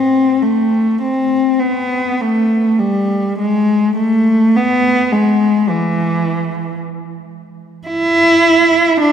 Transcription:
0.00 0.43 C4 medium
0.43 1.03 A3 medium
1.02 1.60 C4 medium
1.60 2.19 B3 medium
2.21 2.80 A3 medium
2.79 3.39 G3 medium
3.39 3.97 G#3 medium
3.97 4.54 A3 medium
4.56 5.14 B3 medium
5.12 5.68 G#3 medium
5.69 6.77 E3 medium
7.88 8.97 E4 medium
9.01 9.12 D4 medium

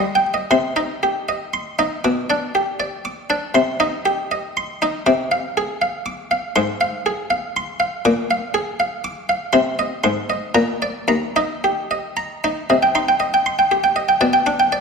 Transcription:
0.00 0.26 G3 soft
0.00 0.17 D#5 soft
0.15 0.34 G5 soft
0.34 0.51 D#5 soft
0.51 0.75 C3 medium
0.51 0.78 C6 medium
0.76 1.03 D#4 soft
0.76 1.03 D#5 soft
1.03 1.29 G4 soft
1.29 1.55 D#5 medium
1.54 1.80 C6 medium
1.79 2.04 D#4 soft
1.79 2.04 D#5 soft
2.04 2.29 B2 medium
2.04 2.31 D6 medium
2.30 2.56 D4 soft
2.30 2.56 D5 soft
2.55 2.81 G4 soft
2.80 3.06 D5 medium
3.05 3.32 D6 medium
3.30 3.55 D4 soft
3.30 3.55 D5 medium
3.54 3.79 C3 medium
3.54 3.81 C6 medium
3.80 4.07 D#4 medium
3.80 4.07 D#5 medium
4.06 4.32 G4 medium
4.31 4.58 D#5 medium
4.57 4.83 C6 medium
4.82 5.07 D#4 medium
4.82 5.07 D#5 medium
5.06 5.31 C3 medium
5.06 5.33 D6 medium
5.32 5.57 F5 medium
5.57 5.83 G#4 medium
5.82 6.07 F5 medium
6.06 6.32 D6 medium
6.31 6.56 F5 medium
6.56 6.80 G#2 medium
6.56 6.82 C6 medium
6.81 7.07 F5 medium
7.06 7.32 G#4 medium
7.30 7.56 F5 medium
7.57 7.82 C6 medium
7.80 8.05 F5 medium
8.05 8.29 A#2 medium
8.05 8.31 D6 medium
8.31 8.56 F5 medium
8.54 8.80 G#4 medium
8.80 9.06 F5 medium
9.04 9.31 D6 medium
9.29 9.55 F5 medium
9.53 9.78 C3 medium
9.53 9.80 C6 medium
9.79 10.05 D#5 medium
10.04 10.29 G#2 medium
10.04 10.31 C6 medium
10.30 10.56 D#5 medium
10.55 10.81 A#2 medium
10.55 10.83 A#5 medium
10.82 11.09 D5 medium
11.08 11.35 D#2 medium
11.08 11.38 A#5 medium
11.36 11.65 D#4 soft
11.36 11.65 D#5 medium
11.64 11.92 G4 medium
11.91 12.18 D#5 medium
12.17 12.45 A#5 soft
12.44 12.70 D#4 soft
12.44 12.69 D#5 soft
12.70 12.95 C3 soft
12.70 12.83 D#5 soft
12.83 12.96 G5 soft
12.95 13.22 D#4 soft
12.95 13.09 C6 medium
13.09 13.22 G5 soft
13.20 13.34 D#5 soft
13.34 13.47 G5 soft
13.46 13.59 C6 soft
13.59 13.72 G5 soft
13.71 13.85 G4 soft
13.84 13.97 G5 soft
13.96 14.09 D#5 soft
14.09 14.21 G5 soft
14.21 14.46 B2 soft
14.21 14.35 D5 soft
14.33 14.47 G5 soft
14.46 14.73 D4 soft
14.46 14.60 D6 medium
14.60 14.73 G5 soft
14.72 14.81 D5 soft

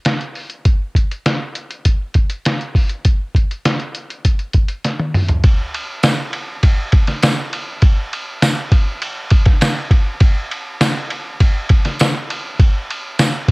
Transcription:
0.05 snare loud
0.05 closed hi-hat medium
0.21 closed hi-hat soft
0.35 open hi-hat soft
0.50 closed hi-hat soft
0.65 kick loud
0.65 closed hi-hat medium
0.95 kick medium
0.95 closed hi-hat medium
1.11 closed hi-hat soft
1.26 snare loud
1.26 closed hi-hat medium
1.55 closed hi-hat medium
1.71 closed hi-hat medium
1.85 kick medium
1.85 closed hi-hat medium
2.14 kick medium
2.14 closed hi-hat medium
2.30 closed hi-hat medium
2.45 snare loud
2.45 closed hi-hat medium
2.61 closed hi-hat soft
2.75 kick medium
2.75 open hi-hat soft
2.89 closed hi-hat soft
3.05 kick loud
3.05 closed hi-hat medium
3.35 kick medium
3.35 closed hi-hat medium
3.51 closed hi-hat soft
3.65 snare loud
3.65 closed hi-hat medium
3.80 closed hi-hat soft
3.95 closed hi-hat medium
4.10 closed hi-hat medium
4.25 kick medium
4.25 closed hi-hat medium
4.39 closed hi-hat soft
4.53 kick medium
4.53 closed hi-hat medium
4.68 closed hi-hat medium
4.84 snare medium
4.84 closed hi-hat medium
5.00 high tom medium
5.14 mid tom medium
5.14 open hi-hat soft
5.28 closed hi-hat soft
5.28 floor tom medium
5.44 kick loud
5.44 ride medium
5.74 ride medium
6.03 snare loud
6.03 ride medium
6.03 tambourine medium
6.33 ride medium
6.63 kick loud
6.63 ride medium
6.92 kick loud
6.92 ride medium
7.07 snare soft
7.07 ride soft
7.23 snare loud
7.23 ride medium
7.23 tambourine medium
7.53 ride medium
7.82 kick loud
7.82 ride medium
8.13 ride medium
8.42 snare loud
8.42 ride medium
8.42 tambourine medium
8.72 kick loud
8.72 ride medium
9.02 ride medium
9.30 kick medium
9.30 ride medium
9.46 kick loud
9.46 snare soft
9.46 ride medium
9.61 snare loud
9.61 ride medium
9.61 tambourine medium
9.91 kick loud
9.91 ride medium
10.20 kick loud
10.20 ride medium
10.51 ride medium
10.81 snare loud
10.81 ride medium
10.81 tambourine medium
11.10 ride medium
11.40 kick medium
11.40 ride medium
11.69 kick loud
11.69 ride medium
11.85 snare soft
11.85 ride soft
11.99 snare loud
11.99 ride medium
11.99 tambourine medium
12.30 ride medium
12.59 kick loud
12.59 ride medium
12.90 ride medium
13.19 snare loud
13.19 ride medium
13.19 tambourine medium
13.48 kick loud
13.48 ride medium

